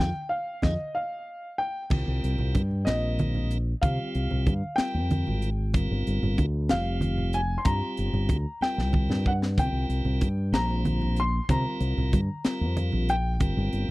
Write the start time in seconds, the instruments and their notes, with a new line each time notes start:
Already playing: grand piano G5
0.00 fingered electric bass F2, snare
0.29 grand piano F5
0.62 fingered electric bass F2, tonewheel organ D#4 F4 G#4, grand piano D#5, kick, snare, high conga
0.95 grand piano F5
1.58 grand piano G5
1.90 fingered electric bass C2, tonewheel organ G3 C4 F4 A#4, kick, crash, high conga
2.08 fingered electric bass C2
2.24 fingered electric bass C2, closed hi-hat
2.38 fingered electric bass C2, low conga
2.55 fingered electric bass G2, kick, closed hi-hat, high conga
2.71 low conga
2.85 fingered electric bass A#1, tonewheel organ G3 C4 F4 A#4, grand piano D#5, snare, closed hi-hat
3.19 closed hi-hat, high conga
3.35 low conga
3.51 closed hi-hat
3.82 fingered electric bass C3, tonewheel organ G3 C4 F4 G4, grand piano F5, kick, closed hi-hat, high conga
4.15 fingered electric bass C2, closed hi-hat
4.31 fingered electric bass C2, low conga
4.46 fingered electric bass G2, kick, closed hi-hat, high conga
4.64 low conga
4.76 tonewheel organ G3 C4, grand piano G5, muted fingered electric bass stroke, snare, closed hi-hat
4.80 tonewheel organ F4 A#4
4.94 fingered electric bass F2
5.11 closed hi-hat, high conga
5.27 fingered electric bass G#1, low conga
5.42 closed hi-hat
5.74 fingered electric bass G1, tonewheel organ G3 C4 F4 A#4, kick, closed hi-hat, high conga
5.91 fingered electric bass G1
6.07 fingered electric bass G1, closed hi-hat
6.22 fingered electric bass G1, low conga
6.38 fingered electric bass D2, kick, closed hi-hat, high conga
6.54 low conga
6.69 fingered electric bass F1, tonewheel organ G3 C4 F4 G4, grand piano F5, snare, closed hi-hat
7.01 closed hi-hat, high conga
7.18 low conga
7.33 grand piano G#5, closed hi-hat
7.58 grand piano C6
7.65 fingered electric bass G2, tonewheel organ G3 C4 F4 G4, grand piano A#5, kick, closed hi-hat, high conga, low conga
7.97 fingered electric bass G1, closed hi-hat
8.13 fingered electric bass G1, low conga
8.29 fingered electric bass D2, kick, closed hi-hat, high conga
8.61 tonewheel organ G3 C4 F4 A#4, grand piano G5, muted fingered electric bass stroke, snare, low conga
8.77 fingered electric bass C2, snare, low conga
8.93 kick, high conga
9.09 fingered electric bass G2, snare, low conga
9.25 grand piano F#5, kick, low conga
9.42 snare
9.58 fingered electric bass C2, tonewheel organ G3 C4 F4 A#4, grand piano G5, kick, closed hi-hat, high conga
9.72 fingered electric bass C2
9.89 fingered electric bass C2, closed hi-hat
10.05 fingered electric bass C2, low conga
10.21 fingered electric bass G2, kick, closed hi-hat, high conga
10.38 low conga
10.52 fingered electric bass A#1, tonewheel organ G3 C4 F4 C5, grand piano A#5, snare, closed hi-hat
10.85 closed hi-hat, high conga
11.02 low conga
11.16 grand piano C6, closed hi-hat
11.49 fingered electric bass C3, tonewheel organ G3 C4 F4 A#4, grand piano A#5, kick, closed hi-hat, high conga
11.80 fingered electric bass C2, closed hi-hat
11.97 fingered electric bass C2, low conga
12.13 fingered electric bass G2, kick, closed hi-hat, high conga
12.30 low conga
12.45 tonewheel organ G3 C4 F4 A#4, muted fingered electric bass stroke, snare, closed hi-hat
12.61 fingered electric bass F2
12.77 closed hi-hat, high conga
12.92 fingered electric bass A#1, low conga
13.09 grand piano G5, closed hi-hat
13.40 fingered electric bass G1, tonewheel organ G3 C4 F4 A#4, kick, closed hi-hat, high conga
13.57 fingered electric bass G1
13.73 fingered electric bass G1, closed hi-hat